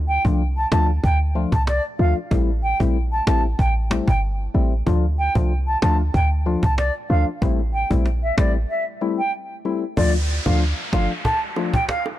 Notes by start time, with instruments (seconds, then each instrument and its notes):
Already playing: 808-style bass D2
0.08 flute G5
0.25 808-style bass C2, synth stab F3 A3 D4 F4, cajon bass
0.57 flute A5
0.72 808-style bass D2, synth stab F3 A3 D4 F4, flute A5, cajon slap
1.04 808-style bass D2, flute G5, cajon bass
1.35 synth stab F3 A3 D4 F4
1.52 808-style bass C2, flute A5, cajon bass
1.67 flute D5, cajon slap
1.99 808-style bass D2, synth stab F3 A3 D4 F4, flute F5
2.31 808-style bass A1, synth stab G3 A3 C4 E4, cajon bass
2.63 flute G5
2.80 808-style bass A#1, synth stab G3 A3 C4 E4, cajon bass
3.12 flute A5
3.27 808-style bass A1, synth stab G3 A3 C4 E4, flute A5, cajon slap
3.59 808-style bass A1, flute G5, cajon bass
3.90 synth stab G3 A3 C4 E4, cajon slap
4.08 808-style bass G1, flute G5, cajon bass
4.54 808-style bass A1, synth stab G3 A3 C4 E4
4.86 808-style bass D2, synth stab F3 A3 D4 F4, cajon bass
5.19 flute G5
5.35 808-style bass C2, synth stab F3 A3 D4 F4, cajon bass
5.67 flute A5
5.82 808-style bass D2, synth stab F3 A3 D4 F4, flute A5, cajon slap
6.14 808-style bass D2, flute G5, cajon bass
6.46 synth stab F3 A3 D4 F4
6.63 808-style bass C2, flute A5, cajon bass
6.78 flute D5, cajon slap
7.10 808-style bass D2, synth stab F3 A3 D4 F4, flute F5
7.42 808-style bass A1, synth stab G3 A3 C4 E4, cajon bass
7.74 flute G5
7.90 808-style bass A#1, synth stab G3 A3 C4 E4, cajon bass
8.06 cajon slap
8.23 flute E5
8.37 808-style bass A1, synth stab G3 A3 C4 E4, flute D5, cajon slap
8.70 flute E5
9.01 synth stab G3 A3 C4 E4
9.18 flute G5
9.65 synth stab G3 A3 C4 E4
9.97 808-style bass D2, synth stab F3 A3 D4 F4, flute D5, cajon bass, downlifter, high bongo
10.29 cajon slap
10.46 808-style bass D2, synth stab F3 A3 D4 F4, flute F5, cajon bass, high bongo
10.92 808-style bass G1, synth stab F3 A3 D4 F4, flute F5, cajon slap, high bongo, low bongo
11.25 flute A5, cajon bass, high bongo
11.56 synth stab F3 A3 D4 F4, cajon slap, high bongo
11.74 flute G5, cajon bass
11.89 flute F5, cajon slap
12.06 high bongo